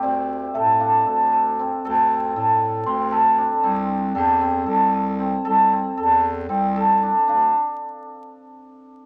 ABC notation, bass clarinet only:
X:1
M:7/8
L:1/8
Q:1/4=115
K:Dm
V:1 name="Bass clarinet" clef=bass
D,,2 A,,2 D,,3 | D,,2 A,,2 D,,3 | C,,2 E,,2 C,,3 | C,,2 E,,2 C,,3 |
D,, z6 |]